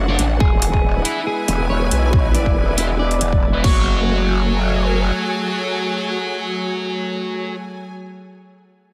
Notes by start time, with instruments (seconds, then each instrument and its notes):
Already playing: wobble bass F#1, ambient pad A3 D4 F#4, string section D4 F#5, clean electric guitar C#5
0.09 distorted electric guitar D4 A4 D5
0.19 wobble bass A1, closed hi-hat
0.40 wobble bass E1, ambient pad G#3 B3 E4, string section E4, clean electric guitar G#4, kick
0.62 closed hi-hat
0.69 string section B4
0.73 kick
0.85 wobble bass D#1, string section G#5
1.05 distorted electric guitar E4 B4 E5, closed hi-hat
1.27 clean electric guitar G#4
1.48 wobble bass E1, closed hi-hat
1.70 wobble bass E1, clean electric guitar C#5
1.91 wobble bass B1, closed hi-hat
2.13 kick
2.35 clean electric guitar D5, closed hi-hat
2.46 kick
2.56 wobble bass E1
2.77 wobble bass E1, distorted electric guitar E4 B4 E5, closed hi-hat
2.99 clean electric guitar D5
3.11 closed hi-hat
3.21 wobble bass E1, closed hi-hat
3.32 kick
3.54 distorted electric guitar E4 B4 E5
3.64 wobble bass F#1, ambient pad F#3 F#4 G#4 A4 C#5, string section F#4, distorted electric guitar F#4 C#5 F#5, clean electric guitar C#5, kick, crash
3.71 string section A3
3.99 string section G#5